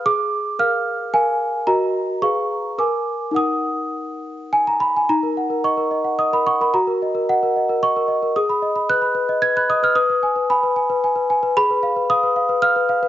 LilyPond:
\new Staff \with { instrumentName = "Celesta" } { \time 3/4 \key ees \minor \tempo 4 = 111 << { d'''4 f'''4 aes''4 | bes''4 des'''4 d'''4 | ees'''2 aes''16 bes''16 ces'''16 aes''16 | bes''4 des'''4 ees'''16 ces'''16 des'''16 ces'''16 |
bes''4 ges''4 des'''4 | ees'''4 ges'''4 aes'''16 ges'''16 ees'''16 f'''16 | ees'''4 ces'''4 r4 | ces'''4 ees'''4 f'''4 | } \\ { aes'4 <bes' f''>4 <bes' f''>4 | <ges' bes' ees''>4 <aes' ces'' f''>4 <bes' aes''>4 | <ees' bes' ges''>2. | ees'16 bes'16 ges''16 bes'16 ees''16 bes'16 ees''16 ges''16 ees''16 bes'16 ges''16 bes'16 |
ges'16 bes'16 ees''16 bes'16 ees''16 bes'16 ees''16 bes'16 ees''16 bes'16 ees''16 bes'16 | aes'16 ces'''16 ees''16 ces'''16 ces''16 ces'''16 ces''16 ees''16 ces''16 ces'''16 ees''16 ces''16 | ces''16 ces''16 aes''16 ces''16 aes''16 ces''16 aes''16 ces''16 aes''16 ces''16 aes''16 ces''16 | aes'16 ces''16 f''16 ces''16 f''16 ces''16 f''16 ces''16 f''16 ces''16 f''16 ces''16 | } >> }